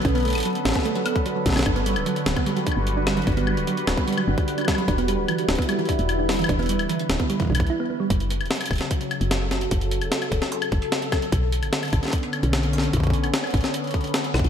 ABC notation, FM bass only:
X:1
M:4/4
L:1/16
Q:1/4=149
K:F#phr
V:1 name="FM bass" clef=bass
B,,,3 A,,, z2 A,,, z6 z B,,, B,,, | G,,,3 D,,, z2 D,,, z4 G,,,4- G,,, | G,,,3 D,,, z2 D,,, z3 G,,, z4 z | E,,,3 D,,, z2 D,,, z4 E,,,4- E,,, |
E,,,3 D,,, z2 D,,, z3 B,,,2 z4 | F,,,3 E,,, z2 E,,, z4 F,,,4- F,,, | F,,,3 E,,, z2 E,,, z3 F,,, z4 z | B,,,3 A,,, z2 A,,, z4 B,,,4- B,,, |
B,,,3 A,,, z2 A,,, z6 z B,,, B,,, |]